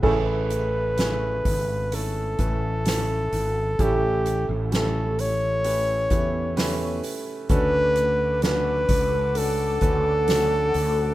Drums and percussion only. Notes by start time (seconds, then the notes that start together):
0.03 kick, crash
0.50 hi-hat pedal, open hi-hat
0.98 snare, hi-hat pedal, open hi-hat
1.45 kick, hi-hat pedal, open hi-hat
1.92 hi-hat pedal, open hi-hat
2.39 kick, hi-hat pedal, open hi-hat
2.86 snare, hi-hat pedal, open hi-hat
3.32 hi-hat pedal, open hi-hat
3.79 kick, hi-hat pedal, open hi-hat
4.26 hi-hat pedal, open hi-hat
4.72 snare, hi-hat pedal, open hi-hat
5.19 hi-hat pedal, open hi-hat
5.64 hi-hat pedal, open hi-hat
6.10 kick, hi-hat pedal, open hi-hat
6.57 snare, hi-hat pedal, open hi-hat
7.03 hi-hat pedal, open hi-hat
7.49 kick, hi-hat pedal, open hi-hat
7.96 hi-hat pedal, open hi-hat
8.42 snare, hi-hat pedal, open hi-hat
8.89 kick, hi-hat pedal, open hi-hat
9.35 hi-hat pedal, open hi-hat
9.81 kick, hi-hat pedal, open hi-hat
10.28 snare, hi-hat pedal, open hi-hat
10.74 hi-hat pedal, open hi-hat